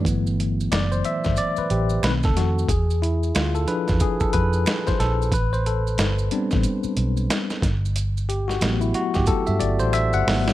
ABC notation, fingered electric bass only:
X:1
M:4/4
L:1/16
Q:"Swing 16ths" 1/4=91
K:G
V:1 name="Fingered electric bass" clef=bass
G,,,4 F,,,2 z G,,, z2 A,,,2 B,,,2 =F,,2 | E,,4 D,,2 z E,, z2 =F,,2 z2 _B,,,2 | A,,,4 G,,,2 z A,,, z2 B,,,2 z2 G,,,2- | G,,,4 A,,,2 z G,,, z G,, G,,, A,,,2 G,,, _A,,,2 |]